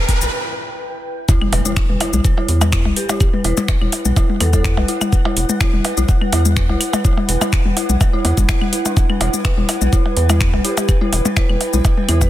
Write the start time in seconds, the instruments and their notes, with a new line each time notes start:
Already playing: ambient pad E4 B4 G5, riser
0.09 kick, open hi-hat
0.21 analog synth bass B1, synth bell B4, shaker
1.28 synth bell E4, ambient pad E4, kick, impact, percussion blips, shaker
1.37 ambient pad B4
1.41 high tom, claves
1.52 analog synth bass E1, synth bell B4, open hi-hat, percussion blips
1.65 synth bell E4, high tom, shaker
1.74 ambient pad F#5, finger snap, kick, percussion blips, shaker
1.89 analog synth bass E1, synth bell B4, high tom
2.00 synth bell E4, open hi-hat, percussion blips, claves
2.13 analog synth bass B1, high tom, shaker
2.25 synth bell B4, kick, shaker
2.37 synth bell E4, high tom, percussion blips
2.49 analog synth bass E2, open hi-hat
2.61 synth bell B4, high tom, percussion blips, claves, shaker
2.72 synth bell E4, finger snap, kick, shaker
2.85 analog synth bass B1, high tom, percussion blips
2.96 vibraphone G4, synth bell B4, open hi-hat
3.09 synth bell E4, high tom, percussion blips, shaker
3.20 kick, claves, shaker
3.33 synth bell B4, high tom
3.44 analog synth bass E1, synth bell E4, vibraphone B4, open hi-hat, percussion blips
3.57 high tom, percussion blips, shaker
3.68 synth bell B4, finger snap, kick, percussion blips, shaker
3.81 analog synth bass E1, synth bell E4, high tom, claves
3.92 open hi-hat, percussion blips
4.05 analog synth bass B1, synth bell B4, high tom, shaker
4.16 synth bell E4, kick, percussion blips, shaker
4.29 high tom
4.40 analog synth bass E2, vibraphone A4, synth bell B4, open hi-hat, percussion blips, claves
4.53 synth bell E4, vibraphone A4, kick, high tom, percussion blips, shaker
4.64 finger snap, kick, shaker
4.77 analog synth bass B1, synth bell B4, high tom, percussion blips
4.88 synth bell E4, open hi-hat
5.01 high tom, percussion blips, claves, shaker
5.13 synth bell B4, kick, shaker
5.25 synth bell E4, high tom, percussion blips
5.37 analog synth bass E1, open hi-hat
5.49 synth bell B4, high tom, shaker
5.61 synth bell E4, finger snap, kick, percussion blips, claves, shaker
5.73 analog synth bass E1, high tom
5.85 synth bell B4, open hi-hat, percussion blips
5.97 analog synth bass B1, synth bell E4, high tom, shaker
6.09 kick, percussion blips, shaker
6.21 synth bell B4, high tom, claves
6.33 analog synth bass E2, synth bell E4, open hi-hat, percussion blips
6.45 high tom, shaker
6.57 synth bell B4, finger snap, kick, shaker
6.69 analog synth bass B1, synth bell E4, high tom, percussion blips
6.81 open hi-hat, claves
6.93 synth bell B4, high tom, percussion blips, shaker
7.04 synth bell E4, kick, shaker
7.17 high tom, percussion blips
7.29 analog synth bass E1, synth bell B4, open hi-hat
7.41 synth bell E4, high tom, percussion blips, claves, shaker
7.53 finger snap, kick, shaker
7.65 analog synth bass E1, synth bell B4, high tom
7.77 synth bell E4, open hi-hat, percussion blips
7.89 analog synth bass B1, high tom, shaker
8.01 synth bell B4, kick, percussion blips, claves, shaker
8.13 synth bell E4, high tom
8.25 analog synth bass E2, synth bell E4, open hi-hat, percussion blips
8.37 analog synth bass G1, synth bell E4, kick, high tom, shaker
8.49 synth bell E4, finger snap, kick, percussion blips, shaker
8.61 high tom, claves
8.73 synth bell E4, open hi-hat
8.85 synth bell D4, high tom, percussion blips, shaker
8.97 kick, percussion blips, shaker
9.09 synth bell B4, high tom, claves
9.20 analog synth bass E1, synth bell E4, open hi-hat, percussion blips
9.34 high tom, shaker
9.42 synth bell B4, ambient pad G5, finger snap, kick, percussion blips, shaker
9.57 analog synth bass E1, synth bell E4, high tom
9.69 open hi-hat, percussion blips, claves
9.81 analog synth bass B1, synth bell B4, high tom, shaker
9.93 synth bell E4, kick, shaker
10.06 high tom, percussion blips
10.17 analog synth bass E2, synth bell B4, open hi-hat
10.29 synth bell E4, high tom, percussion blips, claves, shaker
10.41 finger snap, kick, shaker
10.53 analog synth bass B1, synth bell B4, high tom, percussion blips
10.64 synth bell E4, vibraphone G4, open hi-hat
10.77 vibraphone G4, high tom, percussion blips, shaker
10.89 synth bell B4, kick, claves, shaker
11.01 synth bell E4, high tom
11.13 analog synth bass E1, open hi-hat, percussion blips
11.25 synth bell B4, high tom, percussion blips, shaker
11.36 synth bell E4, vibraphone B4, finger snap, kick, percussion blips, shaker
11.49 analog synth bass E1, vibraphone B4, high tom, claves
11.61 synth bell B4, open hi-hat, percussion blips
11.73 analog synth bass B1, synth bell E4, high tom, shaker
11.85 kick, percussion blips, shaker
11.97 synth bell B4, high tom
12.09 analog synth bass E2, synth bell E4, open hi-hat, percussion blips, claves
12.21 vibraphone B4, kick, high tom, percussion blips, shaker